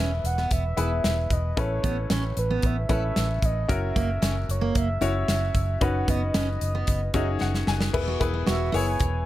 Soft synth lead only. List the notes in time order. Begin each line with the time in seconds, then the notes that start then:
Already playing: E5
0.26 F#5
0.52 E5
1.33 D#5
1.59 C#5
2.39 B4
2.66 E5
2.92 E5
3.45 D#5
3.72 E5
4.51 C#5
4.77 E5
5.04 E5
5.83 F#5
6.10 D#5
8.49 E5
8.75 G#5